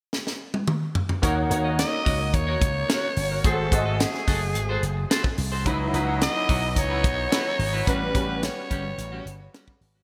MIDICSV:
0, 0, Header, 1, 8, 480
1, 0, Start_track
1, 0, Tempo, 554017
1, 1067, Time_signature, 4, 2, 24, 8
1, 8691, End_track
2, 0, Start_track
2, 0, Title_t, "Alto saxophone"
2, 0, Program_c, 0, 65
2, 1555, Note_on_c, 0, 75, 103
2, 2034, Note_on_c, 0, 73, 96
2, 2047, Note_off_c, 0, 75, 0
2, 2987, Note_off_c, 0, 73, 0
2, 2992, Note_on_c, 0, 69, 84
2, 3469, Note_on_c, 0, 68, 81
2, 3482, Note_off_c, 0, 69, 0
2, 4427, Note_off_c, 0, 68, 0
2, 5397, Note_on_c, 0, 75, 119
2, 5873, Note_on_c, 0, 73, 101
2, 5886, Note_off_c, 0, 75, 0
2, 6836, Note_on_c, 0, 71, 93
2, 6849, Note_off_c, 0, 73, 0
2, 7310, Note_off_c, 0, 71, 0
2, 7318, Note_on_c, 0, 73, 100
2, 8237, Note_off_c, 0, 73, 0
2, 8691, End_track
3, 0, Start_track
3, 0, Title_t, "Clean electric guitar"
3, 0, Program_c, 1, 27
3, 1062, Note_on_c, 1, 66, 84
3, 1070, Note_on_c, 1, 70, 88
3, 1078, Note_on_c, 1, 73, 92
3, 1169, Note_off_c, 1, 73, 0
3, 1182, Note_off_c, 1, 70, 0
3, 1225, Note_off_c, 1, 66, 0
3, 1300, Note_on_c, 1, 66, 47
3, 1309, Note_on_c, 1, 70, 53
3, 1314, Note_on_c, 1, 73, 53
3, 1419, Note_off_c, 1, 70, 0
3, 1420, Note_off_c, 1, 73, 0
3, 1423, Note_on_c, 1, 75, 60
3, 1426, Note_off_c, 1, 66, 0
3, 1430, Note_on_c, 1, 70, 52
3, 1437, Note_on_c, 1, 66, 49
3, 1551, Note_off_c, 1, 75, 0
3, 1554, Note_off_c, 1, 70, 0
3, 1558, Note_off_c, 1, 66, 0
3, 1774, Note_on_c, 1, 66, 82
3, 1783, Note_on_c, 1, 70, 86
3, 1788, Note_on_c, 1, 75, 87
3, 1897, Note_off_c, 1, 70, 0
3, 1897, Note_off_c, 1, 75, 0
3, 1941, Note_off_c, 1, 66, 0
3, 2140, Note_on_c, 1, 73, 82
3, 2147, Note_on_c, 1, 70, 73
3, 2152, Note_on_c, 1, 66, 68
3, 2252, Note_off_c, 1, 66, 0
3, 2259, Note_off_c, 1, 70, 0
3, 2261, Note_off_c, 1, 73, 0
3, 2500, Note_on_c, 1, 66, 72
3, 2508, Note_on_c, 1, 70, 78
3, 2515, Note_on_c, 1, 73, 89
3, 2611, Note_off_c, 1, 73, 0
3, 2622, Note_off_c, 1, 70, 0
3, 2664, Note_off_c, 1, 66, 0
3, 2862, Note_on_c, 1, 73, 60
3, 2871, Note_on_c, 1, 70, 52
3, 2876, Note_on_c, 1, 66, 46
3, 2971, Note_off_c, 1, 66, 0
3, 2982, Note_on_c, 1, 66, 77
3, 2985, Note_off_c, 1, 70, 0
3, 2988, Note_on_c, 1, 69, 70
3, 2990, Note_off_c, 1, 73, 0
3, 2996, Note_on_c, 1, 72, 79
3, 3094, Note_off_c, 1, 72, 0
3, 3101, Note_off_c, 1, 69, 0
3, 3145, Note_off_c, 1, 66, 0
3, 3222, Note_on_c, 1, 66, 54
3, 3230, Note_on_c, 1, 69, 59
3, 3235, Note_on_c, 1, 72, 59
3, 3337, Note_off_c, 1, 72, 0
3, 3338, Note_off_c, 1, 69, 0
3, 3340, Note_on_c, 1, 75, 62
3, 3342, Note_off_c, 1, 66, 0
3, 3348, Note_on_c, 1, 69, 59
3, 3353, Note_on_c, 1, 66, 50
3, 3469, Note_off_c, 1, 75, 0
3, 3473, Note_off_c, 1, 69, 0
3, 3475, Note_off_c, 1, 66, 0
3, 3703, Note_on_c, 1, 66, 75
3, 3709, Note_on_c, 1, 69, 82
3, 3715, Note_on_c, 1, 75, 87
3, 3820, Note_off_c, 1, 75, 0
3, 3822, Note_off_c, 1, 69, 0
3, 3865, Note_off_c, 1, 66, 0
3, 4063, Note_on_c, 1, 72, 84
3, 4071, Note_on_c, 1, 69, 67
3, 4076, Note_on_c, 1, 66, 72
3, 4175, Note_off_c, 1, 66, 0
3, 4180, Note_off_c, 1, 69, 0
3, 4184, Note_off_c, 1, 72, 0
3, 4421, Note_on_c, 1, 66, 75
3, 4428, Note_on_c, 1, 69, 87
3, 4434, Note_on_c, 1, 72, 92
3, 4530, Note_off_c, 1, 72, 0
3, 4541, Note_off_c, 1, 69, 0
3, 4584, Note_off_c, 1, 66, 0
3, 4781, Note_on_c, 1, 72, 64
3, 4787, Note_on_c, 1, 69, 56
3, 4794, Note_on_c, 1, 66, 49
3, 4896, Note_off_c, 1, 66, 0
3, 4899, Note_on_c, 1, 64, 76
3, 4904, Note_off_c, 1, 69, 0
3, 4907, Note_on_c, 1, 66, 85
3, 4909, Note_off_c, 1, 72, 0
3, 4914, Note_on_c, 1, 71, 95
3, 5007, Note_off_c, 1, 71, 0
3, 5017, Note_off_c, 1, 66, 0
3, 5063, Note_off_c, 1, 64, 0
3, 5137, Note_on_c, 1, 64, 53
3, 5144, Note_on_c, 1, 66, 56
3, 5150, Note_on_c, 1, 71, 59
3, 5254, Note_off_c, 1, 71, 0
3, 5256, Note_off_c, 1, 66, 0
3, 5257, Note_on_c, 1, 73, 61
3, 5262, Note_off_c, 1, 64, 0
3, 5266, Note_on_c, 1, 66, 63
3, 5272, Note_on_c, 1, 64, 53
3, 5387, Note_off_c, 1, 73, 0
3, 5392, Note_off_c, 1, 66, 0
3, 5394, Note_off_c, 1, 64, 0
3, 5616, Note_on_c, 1, 64, 78
3, 5624, Note_on_c, 1, 66, 84
3, 5631, Note_on_c, 1, 73, 86
3, 5734, Note_off_c, 1, 73, 0
3, 5738, Note_off_c, 1, 66, 0
3, 5781, Note_off_c, 1, 64, 0
3, 5978, Note_on_c, 1, 71, 74
3, 5987, Note_on_c, 1, 66, 80
3, 5993, Note_on_c, 1, 64, 66
3, 6092, Note_off_c, 1, 64, 0
3, 6096, Note_off_c, 1, 66, 0
3, 6101, Note_off_c, 1, 71, 0
3, 6340, Note_on_c, 1, 64, 80
3, 6346, Note_on_c, 1, 66, 74
3, 6353, Note_on_c, 1, 71, 85
3, 6446, Note_off_c, 1, 71, 0
3, 6457, Note_off_c, 1, 66, 0
3, 6503, Note_off_c, 1, 64, 0
3, 6696, Note_on_c, 1, 71, 67
3, 6702, Note_on_c, 1, 66, 58
3, 6709, Note_on_c, 1, 64, 52
3, 6816, Note_on_c, 1, 55, 78
3, 6819, Note_off_c, 1, 66, 0
3, 6821, Note_off_c, 1, 64, 0
3, 6824, Note_on_c, 1, 61, 83
3, 6826, Note_off_c, 1, 71, 0
3, 6829, Note_on_c, 1, 66, 90
3, 6929, Note_off_c, 1, 66, 0
3, 6937, Note_off_c, 1, 61, 0
3, 6981, Note_off_c, 1, 55, 0
3, 7053, Note_on_c, 1, 55, 54
3, 7061, Note_on_c, 1, 61, 62
3, 7066, Note_on_c, 1, 66, 66
3, 7172, Note_off_c, 1, 61, 0
3, 7173, Note_off_c, 1, 66, 0
3, 7176, Note_on_c, 1, 67, 61
3, 7179, Note_off_c, 1, 55, 0
3, 7182, Note_on_c, 1, 61, 57
3, 7189, Note_on_c, 1, 55, 50
3, 7306, Note_off_c, 1, 67, 0
3, 7309, Note_off_c, 1, 61, 0
3, 7313, Note_off_c, 1, 55, 0
3, 7536, Note_on_c, 1, 55, 91
3, 7545, Note_on_c, 1, 61, 90
3, 7550, Note_on_c, 1, 67, 101
3, 7659, Note_off_c, 1, 67, 0
3, 7661, Note_off_c, 1, 61, 0
3, 7701, Note_off_c, 1, 55, 0
3, 7901, Note_on_c, 1, 66, 77
3, 7907, Note_on_c, 1, 61, 71
3, 7913, Note_on_c, 1, 55, 63
3, 8016, Note_off_c, 1, 55, 0
3, 8024, Note_off_c, 1, 61, 0
3, 8026, Note_off_c, 1, 66, 0
3, 8263, Note_on_c, 1, 55, 79
3, 8270, Note_on_c, 1, 61, 76
3, 8276, Note_on_c, 1, 66, 81
3, 8375, Note_off_c, 1, 66, 0
3, 8386, Note_off_c, 1, 61, 0
3, 8425, Note_off_c, 1, 55, 0
3, 8623, Note_on_c, 1, 66, 67
3, 8630, Note_on_c, 1, 61, 58
3, 8636, Note_on_c, 1, 55, 53
3, 8691, Note_off_c, 1, 55, 0
3, 8691, Note_off_c, 1, 61, 0
3, 8691, Note_off_c, 1, 66, 0
3, 8691, End_track
4, 0, Start_track
4, 0, Title_t, "Grand piano"
4, 0, Program_c, 2, 0
4, 1057, Note_on_c, 2, 58, 74
4, 1062, Note_on_c, 2, 63, 73
4, 1063, Note_on_c, 2, 66, 77
4, 1067, Note_on_c, 2, 73, 85
4, 1211, Control_c, 2, 64, 127
4, 1283, Note_off_c, 2, 58, 0
4, 1288, Note_off_c, 2, 63, 0
4, 1291, Note_off_c, 2, 66, 0
4, 1293, Note_off_c, 2, 73, 0
4, 1296, Note_on_c, 2, 58, 79
4, 1301, Note_on_c, 2, 63, 70
4, 1304, Note_on_c, 2, 66, 70
4, 1306, Note_on_c, 2, 73, 87
4, 2208, Note_off_c, 2, 58, 0
4, 2211, Note_off_c, 2, 63, 0
4, 2212, Note_off_c, 2, 66, 0
4, 2213, Note_off_c, 2, 73, 0
4, 2979, Note_on_c, 2, 57, 68
4, 2982, Note_on_c, 2, 66, 62
4, 2985, Note_on_c, 2, 68, 62
4, 2991, Note_on_c, 2, 72, 71
4, 2995, Control_c, 2, 64, 0
4, 3140, Control_c, 2, 64, 127
4, 3209, Note_off_c, 2, 57, 0
4, 3210, Note_off_c, 2, 66, 0
4, 3212, Note_off_c, 2, 68, 0
4, 3215, Note_off_c, 2, 72, 0
4, 3222, Note_on_c, 2, 57, 63
4, 3223, Note_on_c, 2, 66, 58
4, 3227, Note_on_c, 2, 68, 64
4, 3232, Note_on_c, 2, 75, 75
4, 4130, Note_off_c, 2, 57, 0
4, 4131, Note_off_c, 2, 66, 0
4, 4133, Note_off_c, 2, 68, 0
4, 4136, Note_off_c, 2, 75, 0
4, 4901, Note_on_c, 2, 54, 87
4, 4905, Note_on_c, 2, 63, 69
4, 4908, Note_on_c, 2, 64, 75
4, 4913, Note_on_c, 2, 71, 84
4, 4916, Control_c, 2, 64, 0
4, 5066, Control_c, 2, 64, 127
4, 5130, Note_off_c, 2, 54, 0
4, 5132, Note_off_c, 2, 63, 0
4, 5133, Note_off_c, 2, 64, 0
4, 5136, Note_off_c, 2, 71, 0
4, 5143, Note_on_c, 2, 54, 78
4, 5146, Note_on_c, 2, 63, 81
4, 5148, Note_on_c, 2, 64, 69
4, 5154, Note_on_c, 2, 71, 92
4, 6051, Note_off_c, 2, 54, 0
4, 6052, Note_off_c, 2, 63, 0
4, 6053, Note_off_c, 2, 64, 0
4, 6056, Note_off_c, 2, 71, 0
4, 6813, Note_on_c, 2, 55, 71
4, 6817, Note_on_c, 2, 61, 67
4, 6818, Note_on_c, 2, 66, 60
4, 6823, Note_on_c, 2, 71, 76
4, 6836, Control_c, 2, 64, 0
4, 6998, Control_c, 2, 64, 127
4, 7041, Note_off_c, 2, 55, 0
4, 7046, Note_off_c, 2, 61, 0
4, 7048, Note_off_c, 2, 66, 0
4, 7050, Note_off_c, 2, 71, 0
4, 7054, Note_on_c, 2, 55, 71
4, 7059, Note_on_c, 2, 61, 63
4, 7063, Note_on_c, 2, 66, 63
4, 7067, Note_on_c, 2, 71, 75
4, 7966, Note_off_c, 2, 55, 0
4, 7969, Note_off_c, 2, 61, 0
4, 7971, Note_off_c, 2, 66, 0
4, 7973, Note_off_c, 2, 71, 0
4, 8691, End_track
5, 0, Start_track
5, 0, Title_t, "Accordion"
5, 0, Program_c, 3, 21
5, 4909, Note_on_c, 3, 75, 70
5, 4910, Note_on_c, 3, 52, 68
5, 4911, Note_on_c, 3, 59, 64
5, 4911, Note_on_c, 3, 66, 84
5, 6807, Note_off_c, 3, 52, 0
5, 6807, Note_off_c, 3, 75, 0
5, 6832, Note_on_c, 3, 49, 74
5, 6833, Note_on_c, 3, 55, 77
5, 8691, Note_off_c, 3, 49, 0
5, 8691, Note_off_c, 3, 55, 0
5, 8691, Note_off_c, 3, 59, 0
5, 8691, Note_off_c, 3, 66, 0
5, 8691, End_track
6, 0, Start_track
6, 0, Title_t, "Slap bass"
6, 0, Program_c, 4, 36
6, 1065, Note_on_c, 4, 39, 94
6, 1251, Note_off_c, 4, 39, 0
6, 1304, Note_on_c, 4, 39, 96
6, 1583, Note_off_c, 4, 39, 0
6, 1787, Note_on_c, 4, 37, 83
6, 2023, Note_off_c, 4, 37, 0
6, 2023, Note_on_c, 4, 39, 96
6, 2210, Note_off_c, 4, 39, 0
6, 2265, Note_on_c, 4, 37, 84
6, 2451, Note_off_c, 4, 37, 0
6, 2743, Note_on_c, 4, 31, 83
6, 2930, Note_off_c, 4, 31, 0
6, 2983, Note_on_c, 4, 32, 95
6, 3169, Note_off_c, 4, 32, 0
6, 3220, Note_on_c, 4, 32, 89
6, 3501, Note_off_c, 4, 32, 0
6, 3704, Note_on_c, 4, 30, 91
6, 3944, Note_off_c, 4, 30, 0
6, 3944, Note_on_c, 4, 32, 98
6, 4130, Note_off_c, 4, 32, 0
6, 4181, Note_on_c, 4, 30, 82
6, 4368, Note_off_c, 4, 30, 0
6, 4661, Note_on_c, 4, 36, 90
6, 4903, Note_off_c, 4, 36, 0
6, 4903, Note_on_c, 4, 37, 98
6, 5089, Note_off_c, 4, 37, 0
6, 5140, Note_on_c, 4, 37, 101
6, 5420, Note_off_c, 4, 37, 0
6, 5623, Note_on_c, 4, 35, 83
6, 5858, Note_off_c, 4, 35, 0
6, 5858, Note_on_c, 4, 37, 110
6, 6100, Note_off_c, 4, 37, 0
6, 6100, Note_on_c, 4, 35, 94
6, 6287, Note_off_c, 4, 35, 0
6, 6576, Note_on_c, 4, 32, 86
6, 6764, Note_off_c, 4, 32, 0
6, 6819, Note_on_c, 4, 33, 98
6, 7006, Note_off_c, 4, 33, 0
6, 7058, Note_on_c, 4, 33, 102
6, 7338, Note_off_c, 4, 33, 0
6, 7544, Note_on_c, 4, 31, 88
6, 7729, Note_off_c, 4, 31, 0
6, 7779, Note_on_c, 4, 33, 104
6, 7966, Note_off_c, 4, 33, 0
6, 8018, Note_on_c, 4, 31, 87
6, 8206, Note_off_c, 4, 31, 0
6, 8497, Note_on_c, 4, 32, 92
6, 8685, Note_off_c, 4, 32, 0
6, 8691, End_track
7, 0, Start_track
7, 0, Title_t, "Muted clean electric guitar strokes"
7, 1179, Note_on_c, 9, 29, 47
7, 1266, Note_off_c, 9, 29, 0
7, 1663, Note_on_c, 9, 29, 44
7, 1750, Note_off_c, 9, 29, 0
7, 1901, Note_on_c, 9, 29, 46
7, 1987, Note_off_c, 9, 29, 0
7, 2018, Note_on_c, 9, 29, 34
7, 2104, Note_off_c, 9, 29, 0
7, 2263, Note_on_c, 9, 29, 37
7, 2349, Note_off_c, 9, 29, 0
7, 2382, Note_on_c, 9, 29, 41
7, 2468, Note_off_c, 9, 29, 0
7, 2622, Note_on_c, 9, 29, 43
7, 2708, Note_off_c, 9, 29, 0
7, 2746, Note_on_c, 9, 29, 41
7, 2833, Note_off_c, 9, 29, 0
7, 3104, Note_on_c, 9, 29, 43
7, 3191, Note_off_c, 9, 29, 0
7, 3586, Note_on_c, 9, 29, 35
7, 3673, Note_off_c, 9, 29, 0
7, 3823, Note_on_c, 9, 29, 42
7, 3910, Note_off_c, 9, 29, 0
7, 3945, Note_on_c, 9, 29, 41
7, 4032, Note_off_c, 9, 29, 0
7, 4186, Note_on_c, 9, 29, 34
7, 4272, Note_off_c, 9, 29, 0
7, 4307, Note_on_c, 9, 29, 42
7, 4394, Note_off_c, 9, 29, 0
7, 4540, Note_on_c, 9, 29, 47
7, 4627, Note_off_c, 9, 29, 0
7, 4657, Note_on_c, 9, 29, 38
7, 4744, Note_off_c, 9, 29, 0
7, 5018, Note_on_c, 9, 29, 47
7, 5104, Note_off_c, 9, 29, 0
7, 5501, Note_on_c, 9, 29, 40
7, 5588, Note_off_c, 9, 29, 0
7, 5737, Note_on_c, 9, 29, 37
7, 5824, Note_off_c, 9, 29, 0
7, 5861, Note_on_c, 9, 29, 41
7, 5948, Note_off_c, 9, 29, 0
7, 6102, Note_on_c, 9, 29, 43
7, 6189, Note_off_c, 9, 29, 0
7, 6221, Note_on_c, 9, 29, 48
7, 6308, Note_off_c, 9, 29, 0
7, 6456, Note_on_c, 9, 29, 52
7, 6543, Note_off_c, 9, 29, 0
7, 6578, Note_on_c, 9, 29, 38
7, 6665, Note_off_c, 9, 29, 0
7, 6940, Note_on_c, 9, 29, 46
7, 7026, Note_off_c, 9, 29, 0
7, 7421, Note_on_c, 9, 29, 42
7, 7508, Note_off_c, 9, 29, 0
7, 7662, Note_on_c, 9, 29, 46
7, 7749, Note_off_c, 9, 29, 0
7, 7778, Note_on_c, 9, 29, 49
7, 7865, Note_off_c, 9, 29, 0
7, 8147, Note_on_c, 9, 29, 44
7, 8234, Note_off_c, 9, 29, 0
7, 8386, Note_on_c, 9, 29, 48
7, 8472, Note_off_c, 9, 29, 0
7, 8501, Note_on_c, 9, 29, 44
7, 8588, Note_off_c, 9, 29, 0
7, 8691, End_track
8, 0, Start_track
8, 0, Title_t, "Drums"
8, 112, Note_on_c, 9, 38, 59
8, 199, Note_off_c, 9, 38, 0
8, 233, Note_on_c, 9, 38, 48
8, 319, Note_off_c, 9, 38, 0
8, 467, Note_on_c, 9, 48, 63
8, 553, Note_off_c, 9, 48, 0
8, 585, Note_on_c, 9, 47, 85
8, 672, Note_off_c, 9, 47, 0
8, 824, Note_on_c, 9, 43, 96
8, 911, Note_off_c, 9, 43, 0
8, 947, Note_on_c, 9, 43, 86
8, 1034, Note_off_c, 9, 43, 0
8, 1066, Note_on_c, 9, 36, 89
8, 1066, Note_on_c, 9, 42, 79
8, 1153, Note_off_c, 9, 36, 0
8, 1153, Note_off_c, 9, 42, 0
8, 1306, Note_on_c, 9, 42, 61
8, 1393, Note_off_c, 9, 42, 0
8, 1547, Note_on_c, 9, 42, 92
8, 1552, Note_on_c, 9, 38, 93
8, 1634, Note_off_c, 9, 42, 0
8, 1638, Note_off_c, 9, 38, 0
8, 1785, Note_on_c, 9, 46, 61
8, 1787, Note_on_c, 9, 36, 82
8, 1871, Note_off_c, 9, 46, 0
8, 1874, Note_off_c, 9, 36, 0
8, 2025, Note_on_c, 9, 36, 85
8, 2026, Note_on_c, 9, 42, 87
8, 2112, Note_off_c, 9, 36, 0
8, 2113, Note_off_c, 9, 42, 0
8, 2266, Note_on_c, 9, 36, 97
8, 2267, Note_on_c, 9, 42, 64
8, 2352, Note_off_c, 9, 36, 0
8, 2354, Note_off_c, 9, 42, 0
8, 2508, Note_on_c, 9, 42, 84
8, 2509, Note_on_c, 9, 38, 106
8, 2594, Note_off_c, 9, 42, 0
8, 2596, Note_off_c, 9, 38, 0
8, 2741, Note_on_c, 9, 46, 66
8, 2827, Note_off_c, 9, 46, 0
8, 2983, Note_on_c, 9, 42, 83
8, 2984, Note_on_c, 9, 36, 99
8, 3069, Note_off_c, 9, 42, 0
8, 3071, Note_off_c, 9, 36, 0
8, 3222, Note_on_c, 9, 36, 90
8, 3225, Note_on_c, 9, 42, 65
8, 3309, Note_off_c, 9, 36, 0
8, 3312, Note_off_c, 9, 42, 0
8, 3466, Note_on_c, 9, 42, 93
8, 3471, Note_on_c, 9, 38, 101
8, 3552, Note_off_c, 9, 42, 0
8, 3557, Note_off_c, 9, 38, 0
8, 3589, Note_on_c, 9, 38, 34
8, 3675, Note_off_c, 9, 38, 0
8, 3703, Note_on_c, 9, 46, 64
8, 3705, Note_on_c, 9, 36, 79
8, 3708, Note_on_c, 9, 38, 32
8, 3790, Note_off_c, 9, 46, 0
8, 3792, Note_off_c, 9, 36, 0
8, 3794, Note_off_c, 9, 38, 0
8, 3941, Note_on_c, 9, 42, 84
8, 4028, Note_off_c, 9, 42, 0
8, 4183, Note_on_c, 9, 42, 72
8, 4270, Note_off_c, 9, 42, 0
8, 4426, Note_on_c, 9, 42, 88
8, 4428, Note_on_c, 9, 38, 102
8, 4512, Note_off_c, 9, 42, 0
8, 4514, Note_off_c, 9, 38, 0
8, 4542, Note_on_c, 9, 36, 86
8, 4629, Note_off_c, 9, 36, 0
8, 4657, Note_on_c, 9, 46, 79
8, 4743, Note_off_c, 9, 46, 0
8, 4902, Note_on_c, 9, 42, 83
8, 4903, Note_on_c, 9, 36, 99
8, 4989, Note_off_c, 9, 42, 0
8, 4990, Note_off_c, 9, 36, 0
8, 5145, Note_on_c, 9, 42, 76
8, 5231, Note_off_c, 9, 42, 0
8, 5382, Note_on_c, 9, 42, 92
8, 5387, Note_on_c, 9, 38, 106
8, 5469, Note_off_c, 9, 42, 0
8, 5474, Note_off_c, 9, 38, 0
8, 5621, Note_on_c, 9, 46, 62
8, 5624, Note_on_c, 9, 36, 85
8, 5707, Note_off_c, 9, 46, 0
8, 5711, Note_off_c, 9, 36, 0
8, 5859, Note_on_c, 9, 42, 85
8, 5860, Note_on_c, 9, 36, 78
8, 5946, Note_off_c, 9, 42, 0
8, 5947, Note_off_c, 9, 36, 0
8, 6100, Note_on_c, 9, 42, 71
8, 6101, Note_on_c, 9, 36, 98
8, 6187, Note_off_c, 9, 42, 0
8, 6188, Note_off_c, 9, 36, 0
8, 6343, Note_on_c, 9, 42, 90
8, 6345, Note_on_c, 9, 38, 107
8, 6430, Note_off_c, 9, 42, 0
8, 6432, Note_off_c, 9, 38, 0
8, 6578, Note_on_c, 9, 46, 72
8, 6665, Note_off_c, 9, 46, 0
8, 6821, Note_on_c, 9, 36, 93
8, 6821, Note_on_c, 9, 42, 78
8, 6907, Note_off_c, 9, 42, 0
8, 6908, Note_off_c, 9, 36, 0
8, 7060, Note_on_c, 9, 36, 87
8, 7060, Note_on_c, 9, 42, 72
8, 7146, Note_off_c, 9, 36, 0
8, 7147, Note_off_c, 9, 42, 0
8, 7301, Note_on_c, 9, 42, 97
8, 7306, Note_on_c, 9, 38, 100
8, 7388, Note_off_c, 9, 42, 0
8, 7393, Note_off_c, 9, 38, 0
8, 7543, Note_on_c, 9, 42, 62
8, 7545, Note_on_c, 9, 36, 81
8, 7630, Note_off_c, 9, 42, 0
8, 7631, Note_off_c, 9, 36, 0
8, 7783, Note_on_c, 9, 42, 86
8, 7869, Note_off_c, 9, 42, 0
8, 8028, Note_on_c, 9, 42, 67
8, 8115, Note_off_c, 9, 42, 0
8, 8268, Note_on_c, 9, 42, 89
8, 8269, Note_on_c, 9, 38, 121
8, 8354, Note_off_c, 9, 42, 0
8, 8356, Note_off_c, 9, 38, 0
8, 8383, Note_on_c, 9, 36, 93
8, 8470, Note_off_c, 9, 36, 0
8, 8502, Note_on_c, 9, 46, 81
8, 8589, Note_off_c, 9, 46, 0
8, 8691, End_track
0, 0, End_of_file